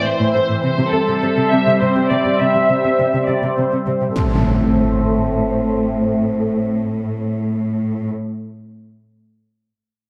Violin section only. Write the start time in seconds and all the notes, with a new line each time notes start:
0.03 C5
0.33 C5
0.62 C5
0.91 A4
1.51 E5
1.80 C5
2.09 D5
2.38 E5
3.27 D5
3.56 C5
3.86 C5
4.16 A4